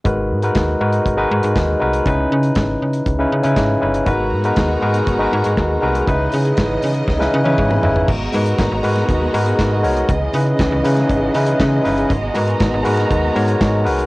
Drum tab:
CC |----------------|----------------|----------------|----------------|
HH |x--xx--xx--xx--x|x--xx--xx--xx--x|x--xx--xx--xx--x|x-oxx-ox--------|
CP |----x-------x---|----x-------x---|----x-------x---|----x-----------|
SD |----o-------o---|----o-------o---|----o-------o---|----o---oo------|
T1 |----------------|----------------|----------------|-----------o----|
T2 |----------------|----------------|----------------|-------------o--|
FT |----------------|----------------|----------------|--------------oo|
BD |o---o---o---o---|o---o---o---o---|o---o---o---o---|o---o---o---o---|

CC |x---------------|----------------|----------------|
HH |--oxx-oxx-oxx-ox|x-oxx-oxx-oxx-ox|x-oxx-oxx-oxx-ox|
CP |----x-------x---|----x-------x---|----x-------x---|
SD |----o--o----o---|----o--o----o---|----o--o----o---|
T1 |----------------|----------------|----------------|
T2 |----------------|----------------|----------------|
FT |----------------|----------------|----------------|
BD |o---o---o---o---|o---o---o---o---|o---o---o---o---|